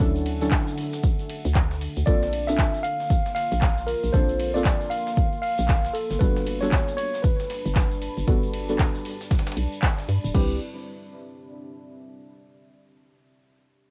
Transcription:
Already playing: D3 A4 E5 F#5
0.00 D2 F#3 C#4 D4 E4 A4, kick, closed hi-hat, shaker
0.16 closed hi-hat, shaker
0.26 closed hi-hat, open hi-hat, ride
0.41 F#3 C#4 D4 E4 A4, shaker
0.51 kick, snare, clap, closed hi-hat, shaker
0.67 closed hi-hat, shaker
0.78 open hi-hat, ride
0.93 snare, closed hi-hat, shaker
1.03 kick, closed hi-hat, shaker
1.19 closed hi-hat, shaker
1.29 closed hi-hat, open hi-hat, ride
1.45 D2, shaker
1.55 kick, snare, clap, closed hi-hat, shaker
1.71 snare, closed hi-hat, shaker
1.81 closed hi-hat, open hi-hat, ride
1.96 D2, closed hi-hat, shaker
2.06 A#1 A#3 C4 D4 F4 A4 D5, kick, closed hi-hat, shaker
2.22 snare, closed hi-hat, shaker
2.33 C6, closed hi-hat, open hi-hat, ride
2.47 A#3 C4 D4 F4 A4 E5, snare, shaker
2.58 kick, snare, clap, closed hi-hat, shaker
2.74 closed hi-hat, shaker
2.83 F5, closed hi-hat, open hi-hat, ride
3.00 snare, closed hi-hat, shaker
3.10 kick, closed hi-hat, shaker
3.26 snare, closed hi-hat, shaker
3.35 F5, snare, closed hi-hat, open hi-hat, ride
3.52 A#1, closed hi-hat, open hi-hat, shaker
3.62 kick, snare, clap, closed hi-hat, shaker
3.78 closed hi-hat, shaker
3.87 A#4, closed hi-hat, open hi-hat, ride
4.04 A#1, closed hi-hat, shaker
4.13 A#1 A#3 C4 D4 F4 A4 C5, kick, closed hi-hat, shaker
4.28 closed hi-hat, shaker
4.40 closed hi-hat, open hi-hat, ride
4.54 A#3 C4 D4 F4 A4 D5, shaker
4.65 kick, snare, clap, closed hi-hat, shaker
4.81 closed hi-hat, shaker
4.90 F5, open hi-hat, ride
5.07 snare, closed hi-hat, shaker
5.16 kick, closed hi-hat, shaker
5.33 closed hi-hat, shaker
5.42 F5, closed hi-hat, open hi-hat, ride
5.58 A#1, shaker
5.68 kick, snare, clap, closed hi-hat, shaker
5.85 snare, closed hi-hat, shaker
5.93 G3 A4, closed hi-hat, open hi-hat, ride
6.05 D4
6.11 G1, snare, closed hi-hat, shaker
6.19 G1 G3 B3 D4 F#4 A4 B4, kick, closed hi-hat, shaker
6.32 B5
6.36 snare, closed hi-hat, shaker
6.41 A5
6.46 closed hi-hat, open hi-hat, ride
6.61 G3 B3 D4 F#4 A4 C#5, snare, shaker
6.72 kick, snare, clap, closed hi-hat, shaker
6.88 closed hi-hat, shaker
6.97 C#5, closed hi-hat, open hi-hat, ride
7.14 snare, closed hi-hat, shaker
7.22 B4, kick, closed hi-hat, shaker
7.40 snare, closed hi-hat, shaker
7.50 snare, closed hi-hat, open hi-hat, ride
7.66 G1, closed hi-hat, open hi-hat, shaker
7.75 kick, snare, clap, closed hi-hat, shaker
7.92 closed hi-hat, shaker
8.02 closed hi-hat, open hi-hat, ride
8.17 G1, closed hi-hat, shaker
8.27 G1 G3 B3 D4 F#4 A4, kick, closed hi-hat, shaker
8.43 closed hi-hat, shaker
8.53 closed hi-hat, open hi-hat, ride
8.69 G3 B3 D4 F#4 A4, shaker
8.79 kick, snare, clap, closed hi-hat, shaker
8.95 closed hi-hat, shaker
9.05 open hi-hat, ride
9.21 snare, closed hi-hat, shaker
9.31 kick, snare, closed hi-hat, shaker
9.39 snare, closed hi-hat
9.47 snare, closed hi-hat, shaker
9.52 snare, closed hi-hat
9.57 B1, closed hi-hat, open hi-hat, ride
9.73 shaker
9.82 kick, snare, clap, closed hi-hat, shaker
9.98 snare, closed hi-hat, shaker
10.09 G2, closed hi-hat, open hi-hat, ride
10.24 D1, closed hi-hat, shaker
10.34 C2 G3 C4 D4 E4 G4 B4, kick, crash
10.44 G4
10.52 D5
10.58 E5

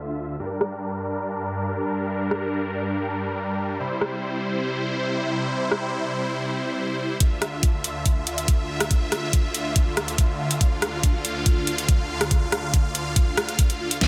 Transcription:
Already playing: D2 D3 F4 E5
0.40 G2 G3 D4 A#4
0.61 cross-stick
2.31 cross-stick
3.80 C3 E4 C5
4.01 cross-stick
5.71 cross-stick
7.20 D2 D3 F4 E5, kick, closed hi-hat
7.42 cross-stick, closed hi-hat
7.63 kick, closed hi-hat
7.84 closed hi-hat
8.06 kick, closed hi-hat
8.27 closed hi-hat
8.38 closed hi-hat
8.48 kick, closed hi-hat
8.80 cross-stick, closed hi-hat
8.91 kick, closed hi-hat
9.12 cross-stick, closed hi-hat
9.33 kick, closed hi-hat
9.54 closed hi-hat
9.76 kick, closed hi-hat
9.97 cross-stick, closed hi-hat
10.08 closed hi-hat
10.18 kick, closed hi-hat
10.51 closed hi-hat
10.61 F5, kick, closed hi-hat
10.82 cross-stick, closed hi-hat
11.03 kick, closed hi-hat
11.25 closed hi-hat
11.46 kick, closed hi-hat
11.67 closed hi-hat
11.78 closed hi-hat
11.89 kick, closed hi-hat
12.21 cross-stick, closed hi-hat
12.31 kick, closed hi-hat
12.52 cross-stick, closed hi-hat
12.74 kick, closed hi-hat
12.95 closed hi-hat
13.16 kick, closed hi-hat
13.37 cross-stick, closed hi-hat
13.49 closed hi-hat
13.59 kick, closed hi-hat
13.70 closed hi-hat
13.91 closed hi-hat
14.01 kick, snare, closed hi-hat

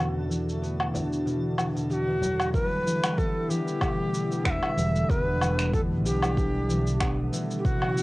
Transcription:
Already playing: E2 B2 D3 A3 B3 F#4 A4
0.00 E3 D4
0.30 E3, shaker
0.49 shaker
0.62 B3, shaker
0.80 low woodblock
0.94 E3, frame drum, shaker
1.13 shaker
1.26 B2, shaker
1.58 E3, low woodblock, shaker
1.75 B2, shaker
1.90 A3 F#4 G4, shaker
2.07 E3
2.22 F#3, frame drum, shaker
2.40 low woodblock, shaker
2.53 D3 E3 G3 A3 E4 A#4, kick, shaker
2.65 B4
2.86 E3, shaker
3.04 finger snap, low woodblock, shaker
3.18 B3 A4, kick, shaker
3.50 E3 G4, shaker
3.68 shaker
3.81 B2, kick, low woodblock, shaker
4.14 B3, shaker
4.31 E3, shaker
4.45 E1 E3 F#5, finger snap, kick, shaker
4.50 E5
4.63 low woodblock
4.77 E1 E3, shaker
4.96 shaker
5.09 E1 B3 D4 B4, kick, shaker
5.41 E3, low woodblock, shaker
5.59 finger snap, shaker
5.73 B2 A4, kick, shaker
6.05 B1 B3 G4, shaker
6.22 E3, low woodblock, shaker
6.37 E3, kick, shaker
6.69 E3, shaker
6.87 shaker
7.01 B3, finger snap, kick, low woodblock, shaker
7.33 E3, shaker
7.51 shaker
7.58 G4
7.65 B2 C#3 F#3 E4 F#4, kick, shaker
7.82 low woodblock
7.96 B3, shaker

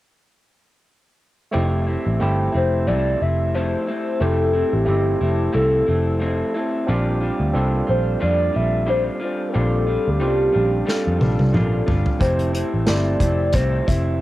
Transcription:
1.51 F1 F3 A3 C4 E4 G4
1.87 A3 C4 E4
2.06 A1
2.19 G1 F3 A3 C4 E4 G4
2.52 F1 A3 C4 E4 C5
2.87 C2 F3 A3 C4 E4 D5
3.20 F1 A3 C4 E4 E5
3.54 F3 A3 C4 E4 C5
3.87 A3 C4 E4 C5
4.19 F1 F3 A3 C4 E4 G4 A4
4.53 A3 C4 E4
4.73 A1 G4
4.85 G1 F3 A3 C4 E4 G4
5.21 F1 A3 C4 E4 G4
5.53 C2 F3 A3 C4 E4 A4
5.87 F1 A3 C4 E4
6.20 F3 A3 C4 E4
6.54 A3 C4 E4
6.87 A#1 A#2 G3 C4 D4 F4 G4
7.20 G3 D4 F4
7.40 D2
7.53 C2 A#2 G3 C4 D4 F4 A4
7.87 A#1 G3 D4 F4 C5
8.20 F2 A#2 G3 D4 F4 D5
8.53 A#1 G3 D4 F4 E5
8.86 A#2 G3 D4 F4 C5
9.20 G3 D4 F4
9.25 C5
9.49 A#4
9.53 A#1 A#2 G3 C4 D4 F4 G4 A4
9.87 G3 D4 F4
10.08 D2 G4
10.19 C2 A#2 G3 C4 C#4 D4 F4 G4
10.27 D4
10.52 A#1 G3 D4 F4
10.58 G4
10.86 A#2 G3 D4 F4, snare
10.90 A4
11.07 F2
11.19 A#1 G3 D4 F4, high tom
11.39 C2, high tom
11.53 A#1 A#2 G3 D4 F4, mid tom
11.87 G1 G3 D4 F4, floor tom
12.06 floor tom
12.19 F1 F3 A3 C4 E4 G4 C5, kick, closed hi-hat
12.39 closed hi-hat
12.53 A3 C4 E4 C5, closed hi-hat
12.74 A1
12.86 G1 F3 A3 C4 E4 G4 D5, snare, closed hi-hat
13.20 F1 A3 C4 E4, kick, closed hi-hat
13.53 C2 F3 A3 C4 E4 C5, kick, closed hi-hat
13.86 F1 A3 C4 E4 E5, kick, closed hi-hat

